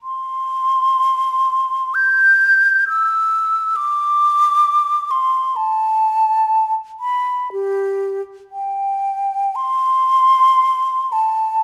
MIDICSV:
0, 0, Header, 1, 2, 480
1, 0, Start_track
1, 0, Tempo, 891530
1, 20, Time_signature, 4, 2, 24, 8
1, 501, Tempo, 1018676
1, 981, Tempo, 937500
1, 1461, Tempo, 894188
1, 2901, Tempo, 944882
1, 3381, Tempo, 1001669
1, 4341, Tempo, 1032702
1, 5301, Tempo, 1107011
1, 5756, End_track
2, 0, Start_track
2, 0, Title_t, "Flute"
2, 0, Program_c, 0, 73
2, 17, Note_on_c, 0, 84, 106
2, 978, Note_on_c, 0, 91, 98
2, 985, Note_off_c, 0, 84, 0
2, 1456, Note_off_c, 0, 91, 0
2, 1459, Note_on_c, 0, 88, 92
2, 1929, Note_on_c, 0, 86, 102
2, 1937, Note_off_c, 0, 88, 0
2, 2653, Note_on_c, 0, 84, 92
2, 2661, Note_off_c, 0, 86, 0
2, 2898, Note_on_c, 0, 81, 99
2, 2905, Note_off_c, 0, 84, 0
2, 3487, Note_off_c, 0, 81, 0
2, 3613, Note_on_c, 0, 83, 83
2, 3862, Note_off_c, 0, 83, 0
2, 3864, Note_on_c, 0, 67, 74
2, 4196, Note_off_c, 0, 67, 0
2, 4338, Note_on_c, 0, 79, 83
2, 4823, Note_on_c, 0, 84, 112
2, 4830, Note_off_c, 0, 79, 0
2, 5534, Note_on_c, 0, 81, 83
2, 5541, Note_off_c, 0, 84, 0
2, 5756, Note_off_c, 0, 81, 0
2, 5756, End_track
0, 0, End_of_file